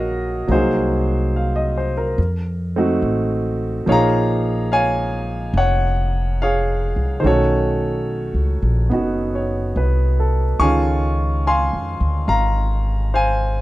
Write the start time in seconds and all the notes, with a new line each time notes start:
Already playing: A#1 D#3 G#3 A#3 C#4 D#4 F#4 G#4 A#4 C#5 D#5 F5
0.48 C2 F#3 A#3 D#4 C5
0.53 F#4 G#4
1.36 F5
1.56 D#5
1.78 C5
1.98 A#4
2.18 F2
2.76 A3 C4 D#4 F#4
3.02 A1
3.86 A#1 F3 A#3 D#4 C#5 F5
3.91 G#4 A#5
4.72 C#5 F5 G#5
5.54 F1 C#5 F#5
6.42 G#4 C#5 F5
6.96 C2
7.20 D#3 A3 C5
7.24 B1 C#4 F#4 A4 C#5
8.34 C#2
8.62 A#1
8.90 F#1 B3 D#4 F#4
9.35 C#5
9.76 C2 B4
10.20 A4
10.59 C#2 D#3 G#3 C#4 F4 F5 G#5 C#6
11.47 F5 G#5 C6
11.73 F2
12.00 D2
12.28 G#1 F5 A#5
13.14 C5 F5 G#5